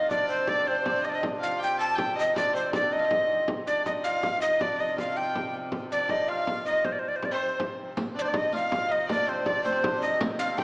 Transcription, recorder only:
Already playing: D#5
0.11 D5
0.28 C5
0.49 D5
0.68 C5
1.05 D#5
1.10 D5
1.15 D#5
1.43 F5
1.63 G5
1.80 A5
1.99 G5
2.19 D#5
2.37 D5
2.56 C5
2.74 D5
2.92 D#5
3.67 D5
3.86 D#5
4.04 F5
4.41 D#5
4.62 D5
4.80 D#5
4.99 F5
5.17 G5
5.92 D5
6.10 D#5
6.28 F5
6.65 D#5
6.85 C5
6.92 D5
6.99 C5
7.08 D5
7.16 C5
7.25 D5
7.32 C5
8.19 C5 D5
8.28 D5
8.37 D#5
8.56 F5
8.92 D#5
9.11 D5
9.29 C5
9.46 D5
9.64 C5
10.02 D#5
10.39 F5
10.58 G5

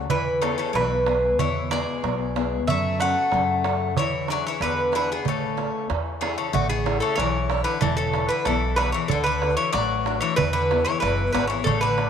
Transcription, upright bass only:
0.09 E2
0.74 B1
1.39 E2
2.03 B1
2.67 F#2
3.32 F#2
3.96 E2
4.60 E2
5.25 A1
5.90 E2
6.53 A1
7.18 B1
7.82 E1
8.46 B1
9.10 D2
9.74 A1
10.38 E2
11.02 F#1
11.35 G#1
11.66 A1

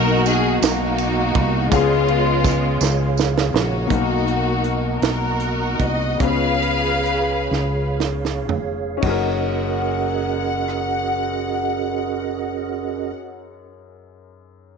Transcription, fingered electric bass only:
Already playing: B1
0.62 B1
1.35 C2
1.72 C#2
2.81 C#2
3.54 A#1
3.90 B1
5.02 B1
5.79 C2
6.20 C#2
7.51 C#2
8.50 F1
9.02 F#1

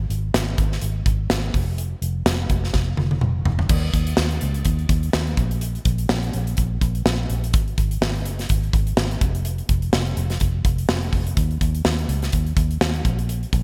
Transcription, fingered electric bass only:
0.10 G#1
0.34 G#1
0.58 G#1
0.82 G#1
1.06 G#1
1.30 G#1
1.54 F1
2.02 F1
2.26 F1
2.50 F1
2.74 F1
2.98 F1
3.21 F1
3.45 F1
3.69 D#2
3.94 D#2
4.18 D#2
4.42 C#2
4.66 D#2
4.89 D#2
5.14 D#2
5.37 A#1
5.86 A#1
6.10 A#1
6.34 A#1
6.58 A#1
6.81 A#1
7.06 A#1
7.30 A#1
7.54 G#1
7.78 G#1
8.01 G#1
8.25 F#1
8.50 G#1
8.73 G#1
8.97 G#1
9.22 F1
9.69 F1
9.93 F1
10.17 F1
10.41 F1
10.65 F1
10.89 F1
11.13 F1
11.37 D#2
11.61 D#2
11.85 D#2
12.09 C#2
12.33 D#2
12.57 D#2
12.81 D#2
13.05 A#1
13.53 A#1

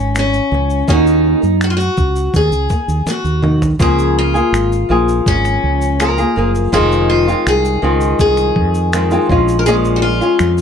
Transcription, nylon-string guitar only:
0.15 A#2 F3
0.51 A#2 F3
0.88 D#3 A#3 C#4 F#4
1.42 D#3 A#3
2.71 D#3 A#3
3.06 D#3 A#3
3.42 D#3 A#3
3.79 C#3 F3 A#3 F4 G#4
4.34 A#3 F4 G#4
4.89 F3 A#3 F4 G#4
6.00 F3 A#3 F4 G#4
6.18 A#3 F4 G#4
6.36 F3 A#3 F4 G#4
6.72 F2 C3 D#3 G#3 C4 F4
7.28 D#3 G#3 C4 F4
7.82 D#3 G#3 C4 F4
8.93 D#3 G#3 C4 F4
9.12 D#3 G#3 C4 F4
9.30 F3 G#3 C#4 F4
9.67 A#2 F3 G#3 C#4 F4
10.21 G#3 C#4 F4

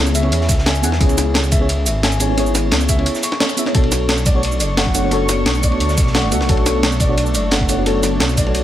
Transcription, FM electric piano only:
Already playing: B3 C#4 E4 G#4 C#5
0.22 B3 C#4 E4 G#4 C#5
0.82 B3 C#4 E4 G#4 F#5
0.98 B3 C#4 E4 G#4
1.03 C#5
1.59 B3 C#4 E4 G#4 C#5
2.19 B3 C#4 E4 G#4 C#5
2.28 B3 C#4 E4 G#4 C#5
2.35 B3 C#4 E4 G#4
2.40 C#5
2.97 B3 C#4 E4 G#4 C#5
3.57 B3 C#4 E4 G#4 E5
3.65 B3 C#4 E4 G#4 C#5
3.73 B3 D4 F#4 A4
3.77 C#5
4.34 B3 D4 F#4 A4 C#5
4.93 B3 D4 F#4 A4 C#5
5.02 B3 D4 F#4 A4 C#5
5.09 B3 D4 F#4 A4
5.14 C#5
5.71 B3 D4 F#4 A4 C#5
6.30 B3 D4 F#4 A4 E5
6.47 B3 D4 F#4 A4
6.51 C#5
7.08 B3 D4 F#4 A4 C#5
7.68 B3 D4 F#4 A4 C#5
7.77 B3 D4 F#4 A4 C#5
7.84 B3 D4 F#4 A4
7.88 C#5
8.45 B3 D4 F#4 A4 C#5

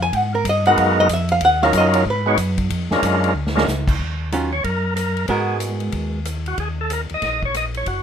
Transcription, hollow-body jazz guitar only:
0.02 G#5
0.17 F#5
0.35 A#4
0.49 D#5
0.67 F#5
0.80 F5
1.00 D#5
1.13 E5
1.32 F5
1.45 F#5
1.63 F5
1.78 D#5
1.95 C#5
2.10 B4
4.33 D#3 F#3 C#4 F4
5.29 G#3 B3 F#4 A#4

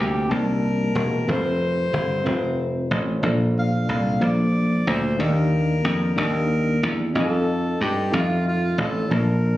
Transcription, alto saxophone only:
0.00 G4
0.32 A#4
1.30 C5
3.59 F5
4.23 D5
4.88 C5
5.21 A#4
6.19 A#4
7.18 A4
7.83 G4
8.15 F4
8.48 F4
8.81 A4
9.13 A#4

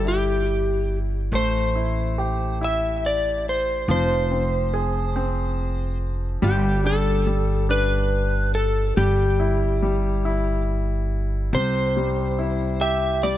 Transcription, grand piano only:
Already playing: G3 E4
0.05 E4
1.33 A3
1.76 E4
2.18 G4
2.61 E4
3.89 F3
4.31 C4
4.74 G#4
5.16 C4
6.42 G3
6.85 D4
7.26 G3
7.69 D4
8.97 G3
9.40 E4
9.82 G3
10.25 E4
11.53 C3
11.97 G3
12.39 E4
12.81 G4
13.24 G3

